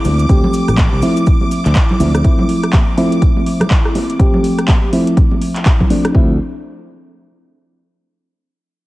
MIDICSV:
0, 0, Header, 1, 6, 480
1, 0, Start_track
1, 0, Key_signature, -1, "minor"
1, 0, Tempo, 487805
1, 288, Time_signature, 4, 2, 24, 8
1, 8727, End_track
2, 0, Start_track
2, 0, Title_t, "String machine"
2, 0, Program_c, 0, 50
2, 0, Note_on_c, 0, 86, 86
2, 6060, Note_off_c, 0, 86, 0
2, 8727, End_track
3, 0, Start_track
3, 0, Title_t, "FM electric piano"
3, 0, Program_c, 1, 5
3, 0, Note_on_c, 1, 53, 97
3, 0, Note_on_c, 1, 57, 89
3, 0, Note_on_c, 1, 60, 88
3, 0, Note_on_c, 1, 64, 107
3, 265, Note_off_c, 1, 53, 0
3, 265, Note_off_c, 1, 57, 0
3, 266, Note_off_c, 1, 60, 0
3, 266, Note_off_c, 1, 64, 0
3, 287, Note_on_c, 1, 53, 91
3, 288, Note_on_c, 1, 57, 83
3, 289, Note_on_c, 1, 60, 84
3, 291, Note_on_c, 1, 67, 100
3, 984, Note_off_c, 1, 53, 0
3, 985, Note_off_c, 1, 57, 0
3, 986, Note_off_c, 1, 60, 0
3, 986, Note_off_c, 1, 67, 0
3, 1007, Note_on_c, 1, 53, 87
3, 1008, Note_on_c, 1, 57, 78
3, 1009, Note_on_c, 1, 60, 77
3, 1010, Note_on_c, 1, 64, 94
3, 1944, Note_off_c, 1, 53, 0
3, 1945, Note_off_c, 1, 57, 0
3, 1946, Note_off_c, 1, 60, 0
3, 1946, Note_off_c, 1, 64, 0
3, 1968, Note_on_c, 1, 53, 74
3, 1968, Note_on_c, 1, 57, 67
3, 1969, Note_on_c, 1, 60, 68
3, 1969, Note_on_c, 1, 64, 81
3, 2185, Note_off_c, 1, 53, 0
3, 2185, Note_off_c, 1, 57, 0
3, 2185, Note_off_c, 1, 60, 0
3, 2186, Note_off_c, 1, 64, 0
3, 2207, Note_on_c, 1, 53, 82
3, 2208, Note_on_c, 1, 57, 77
3, 2209, Note_on_c, 1, 60, 77
3, 2210, Note_on_c, 1, 64, 93
3, 2904, Note_off_c, 1, 53, 0
3, 2905, Note_off_c, 1, 57, 0
3, 2906, Note_off_c, 1, 60, 0
3, 2906, Note_off_c, 1, 64, 0
3, 2927, Note_on_c, 1, 53, 97
3, 2928, Note_on_c, 1, 57, 90
3, 2929, Note_on_c, 1, 60, 89
3, 2930, Note_on_c, 1, 64, 106
3, 4104, Note_off_c, 1, 53, 0
3, 4105, Note_off_c, 1, 57, 0
3, 4105, Note_off_c, 1, 60, 0
3, 4106, Note_off_c, 1, 64, 0
3, 4127, Note_on_c, 1, 53, 93
3, 4128, Note_on_c, 1, 57, 84
3, 4129, Note_on_c, 1, 60, 84
3, 4130, Note_on_c, 1, 67, 101
3, 4825, Note_off_c, 1, 53, 0
3, 4825, Note_off_c, 1, 57, 0
3, 4826, Note_off_c, 1, 60, 0
3, 4826, Note_off_c, 1, 67, 0
3, 4847, Note_on_c, 1, 53, 83
3, 4848, Note_on_c, 1, 57, 77
3, 4849, Note_on_c, 1, 60, 79
3, 4850, Note_on_c, 1, 64, 93
3, 5785, Note_off_c, 1, 53, 0
3, 5785, Note_off_c, 1, 57, 0
3, 5786, Note_off_c, 1, 60, 0
3, 5786, Note_off_c, 1, 64, 0
3, 5807, Note_on_c, 1, 53, 81
3, 5808, Note_on_c, 1, 57, 75
3, 5809, Note_on_c, 1, 60, 76
3, 5809, Note_on_c, 1, 62, 93
3, 6025, Note_off_c, 1, 53, 0
3, 6025, Note_off_c, 1, 57, 0
3, 6025, Note_off_c, 1, 60, 0
3, 6026, Note_off_c, 1, 62, 0
3, 6045, Note_on_c, 1, 53, 85
3, 6047, Note_on_c, 1, 57, 81
3, 6049, Note_on_c, 1, 60, 80
3, 6051, Note_on_c, 1, 64, 96
3, 6234, Note_off_c, 1, 53, 0
3, 6235, Note_off_c, 1, 57, 0
3, 6236, Note_off_c, 1, 60, 0
3, 6237, Note_off_c, 1, 64, 0
3, 8727, End_track
4, 0, Start_track
4, 0, Title_t, "Fingered electric bass"
4, 0, Program_c, 2, 33
4, 48, Note_on_c, 2, 38, 88
4, 254, Note_off_c, 2, 38, 0
4, 288, Note_on_c, 2, 38, 93
4, 406, Note_off_c, 2, 38, 0
4, 671, Note_on_c, 2, 33, 83
4, 862, Note_off_c, 2, 33, 0
4, 911, Note_on_c, 2, 36, 84
4, 991, Note_off_c, 2, 36, 0
4, 1631, Note_on_c, 2, 38, 95
4, 1711, Note_off_c, 2, 38, 0
4, 1968, Note_on_c, 2, 38, 91
4, 2175, Note_off_c, 2, 38, 0
4, 6048, Note_on_c, 2, 38, 94
4, 6272, Note_off_c, 2, 38, 0
4, 8727, End_track
5, 0, Start_track
5, 0, Title_t, "Impact"
5, 0, Program_c, 3, 103
5, 0, Note_on_c, 3, 60, 71
5, 289, Note_off_c, 3, 60, 0
5, 8727, End_track
6, 0, Start_track
6, 0, Title_t, "Drums"
6, 46, Note_on_c, 9, 69, 89
6, 48, Note_on_c, 9, 46, 102
6, 54, Note_on_c, 9, 63, 85
6, 144, Note_off_c, 9, 69, 0
6, 147, Note_off_c, 9, 46, 0
6, 152, Note_off_c, 9, 63, 0
6, 186, Note_on_c, 9, 69, 47
6, 192, Note_on_c, 9, 42, 64
6, 285, Note_off_c, 9, 69, 0
6, 288, Note_off_c, 9, 42, 0
6, 288, Note_on_c, 9, 36, 122
6, 288, Note_on_c, 9, 42, 53
6, 293, Note_on_c, 9, 69, 37
6, 387, Note_off_c, 9, 36, 0
6, 387, Note_off_c, 9, 42, 0
6, 391, Note_off_c, 9, 69, 0
6, 432, Note_on_c, 9, 64, 94
6, 526, Note_on_c, 9, 69, 93
6, 529, Note_on_c, 9, 46, 108
6, 531, Note_off_c, 9, 64, 0
6, 624, Note_off_c, 9, 69, 0
6, 627, Note_off_c, 9, 46, 0
6, 672, Note_on_c, 9, 37, 58
6, 672, Note_on_c, 9, 42, 66
6, 674, Note_on_c, 9, 69, 47
6, 760, Note_off_c, 9, 69, 0
6, 760, Note_on_c, 9, 69, 44
6, 763, Note_on_c, 9, 63, 91
6, 765, Note_on_c, 9, 39, 120
6, 768, Note_on_c, 9, 36, 123
6, 769, Note_off_c, 9, 42, 0
6, 769, Note_on_c, 9, 42, 51
6, 770, Note_off_c, 9, 37, 0
6, 859, Note_off_c, 9, 69, 0
6, 862, Note_off_c, 9, 63, 0
6, 864, Note_off_c, 9, 39, 0
6, 867, Note_off_c, 9, 36, 0
6, 867, Note_off_c, 9, 42, 0
6, 1004, Note_on_c, 9, 69, 89
6, 1009, Note_on_c, 9, 46, 106
6, 1102, Note_off_c, 9, 69, 0
6, 1107, Note_off_c, 9, 46, 0
6, 1149, Note_on_c, 9, 69, 58
6, 1152, Note_on_c, 9, 42, 65
6, 1242, Note_off_c, 9, 69, 0
6, 1242, Note_on_c, 9, 69, 39
6, 1248, Note_on_c, 9, 36, 121
6, 1249, Note_off_c, 9, 42, 0
6, 1249, Note_on_c, 9, 42, 53
6, 1340, Note_off_c, 9, 69, 0
6, 1347, Note_off_c, 9, 36, 0
6, 1347, Note_off_c, 9, 42, 0
6, 1388, Note_on_c, 9, 63, 72
6, 1486, Note_off_c, 9, 63, 0
6, 1489, Note_on_c, 9, 46, 111
6, 1491, Note_on_c, 9, 69, 97
6, 1587, Note_off_c, 9, 46, 0
6, 1589, Note_off_c, 9, 69, 0
6, 1629, Note_on_c, 9, 39, 37
6, 1630, Note_on_c, 9, 69, 57
6, 1632, Note_on_c, 9, 42, 65
6, 1721, Note_off_c, 9, 69, 0
6, 1721, Note_on_c, 9, 69, 38
6, 1725, Note_off_c, 9, 39, 0
6, 1725, Note_on_c, 9, 39, 118
6, 1729, Note_off_c, 9, 42, 0
6, 1729, Note_on_c, 9, 36, 120
6, 1729, Note_on_c, 9, 42, 50
6, 1819, Note_off_c, 9, 69, 0
6, 1824, Note_off_c, 9, 39, 0
6, 1827, Note_off_c, 9, 36, 0
6, 1827, Note_off_c, 9, 42, 0
6, 1876, Note_on_c, 9, 64, 96
6, 1969, Note_on_c, 9, 46, 110
6, 1972, Note_on_c, 9, 69, 105
6, 1974, Note_off_c, 9, 64, 0
6, 1977, Note_on_c, 9, 63, 96
6, 2067, Note_off_c, 9, 46, 0
6, 2070, Note_off_c, 9, 69, 0
6, 2076, Note_off_c, 9, 63, 0
6, 2112, Note_on_c, 9, 37, 75
6, 2112, Note_on_c, 9, 42, 63
6, 2113, Note_on_c, 9, 69, 52
6, 2209, Note_off_c, 9, 42, 0
6, 2209, Note_on_c, 9, 36, 122
6, 2209, Note_on_c, 9, 42, 51
6, 2211, Note_off_c, 9, 37, 0
6, 2212, Note_off_c, 9, 69, 0
6, 2307, Note_off_c, 9, 36, 0
6, 2307, Note_off_c, 9, 42, 0
6, 2349, Note_on_c, 9, 64, 91
6, 2448, Note_off_c, 9, 64, 0
6, 2449, Note_on_c, 9, 46, 110
6, 2548, Note_off_c, 9, 46, 0
6, 2593, Note_on_c, 9, 37, 59
6, 2593, Note_on_c, 9, 42, 62
6, 2686, Note_on_c, 9, 39, 118
6, 2689, Note_off_c, 9, 42, 0
6, 2689, Note_on_c, 9, 36, 127
6, 2689, Note_on_c, 9, 42, 50
6, 2691, Note_off_c, 9, 37, 0
6, 2691, Note_on_c, 9, 63, 94
6, 2784, Note_off_c, 9, 39, 0
6, 2787, Note_off_c, 9, 36, 0
6, 2788, Note_off_c, 9, 42, 0
6, 2789, Note_off_c, 9, 63, 0
6, 2929, Note_on_c, 9, 46, 105
6, 3027, Note_off_c, 9, 46, 0
6, 3073, Note_on_c, 9, 42, 63
6, 3169, Note_off_c, 9, 42, 0
6, 3169, Note_on_c, 9, 36, 122
6, 3169, Note_on_c, 9, 42, 52
6, 3267, Note_off_c, 9, 36, 0
6, 3268, Note_off_c, 9, 42, 0
6, 3314, Note_on_c, 9, 63, 70
6, 3409, Note_on_c, 9, 46, 110
6, 3412, Note_off_c, 9, 63, 0
6, 3507, Note_off_c, 9, 46, 0
6, 3545, Note_on_c, 9, 64, 77
6, 3552, Note_on_c, 9, 37, 76
6, 3552, Note_on_c, 9, 42, 62
6, 3644, Note_off_c, 9, 64, 0
6, 3646, Note_on_c, 9, 39, 117
6, 3649, Note_off_c, 9, 42, 0
6, 3649, Note_on_c, 9, 36, 126
6, 3649, Note_on_c, 9, 42, 50
6, 3650, Note_off_c, 9, 37, 0
6, 3744, Note_off_c, 9, 39, 0
6, 3747, Note_off_c, 9, 36, 0
6, 3748, Note_off_c, 9, 42, 0
6, 3792, Note_on_c, 9, 37, 61
6, 3889, Note_on_c, 9, 46, 109
6, 3889, Note_on_c, 9, 63, 91
6, 3891, Note_off_c, 9, 37, 0
6, 3987, Note_off_c, 9, 63, 0
6, 3988, Note_off_c, 9, 46, 0
6, 4032, Note_on_c, 9, 42, 62
6, 4129, Note_on_c, 9, 36, 120
6, 4130, Note_off_c, 9, 42, 0
6, 4130, Note_on_c, 9, 42, 49
6, 4227, Note_off_c, 9, 36, 0
6, 4228, Note_off_c, 9, 42, 0
6, 4269, Note_on_c, 9, 64, 90
6, 4367, Note_off_c, 9, 64, 0
6, 4369, Note_on_c, 9, 46, 111
6, 4468, Note_off_c, 9, 46, 0
6, 4512, Note_on_c, 9, 37, 61
6, 4512, Note_on_c, 9, 42, 63
6, 4605, Note_on_c, 9, 39, 113
6, 4605, Note_on_c, 9, 63, 88
6, 4608, Note_on_c, 9, 36, 122
6, 4609, Note_off_c, 9, 42, 0
6, 4609, Note_on_c, 9, 42, 49
6, 4611, Note_off_c, 9, 37, 0
6, 4704, Note_off_c, 9, 39, 0
6, 4704, Note_off_c, 9, 63, 0
6, 4707, Note_off_c, 9, 36, 0
6, 4707, Note_off_c, 9, 42, 0
6, 4849, Note_on_c, 9, 46, 107
6, 4947, Note_off_c, 9, 46, 0
6, 4992, Note_on_c, 9, 42, 63
6, 5088, Note_on_c, 9, 36, 122
6, 5089, Note_off_c, 9, 42, 0
6, 5089, Note_on_c, 9, 42, 50
6, 5187, Note_off_c, 9, 36, 0
6, 5187, Note_off_c, 9, 42, 0
6, 5229, Note_on_c, 9, 63, 73
6, 5328, Note_off_c, 9, 63, 0
6, 5328, Note_on_c, 9, 46, 109
6, 5427, Note_off_c, 9, 46, 0
6, 5468, Note_on_c, 9, 39, 35
6, 5472, Note_on_c, 9, 42, 61
6, 5565, Note_off_c, 9, 39, 0
6, 5565, Note_on_c, 9, 39, 116
6, 5568, Note_off_c, 9, 42, 0
6, 5568, Note_on_c, 9, 36, 121
6, 5568, Note_on_c, 9, 42, 49
6, 5663, Note_off_c, 9, 39, 0
6, 5667, Note_off_c, 9, 36, 0
6, 5667, Note_off_c, 9, 42, 0
6, 5711, Note_on_c, 9, 36, 61
6, 5713, Note_on_c, 9, 64, 89
6, 5808, Note_on_c, 9, 63, 98
6, 5809, Note_on_c, 9, 46, 106
6, 5810, Note_off_c, 9, 36, 0
6, 5811, Note_off_c, 9, 64, 0
6, 5906, Note_off_c, 9, 63, 0
6, 5907, Note_off_c, 9, 46, 0
6, 5952, Note_on_c, 9, 37, 81
6, 5952, Note_on_c, 9, 42, 60
6, 6048, Note_on_c, 9, 36, 110
6, 6050, Note_off_c, 9, 37, 0
6, 6050, Note_off_c, 9, 42, 0
6, 6147, Note_off_c, 9, 36, 0
6, 8727, End_track
0, 0, End_of_file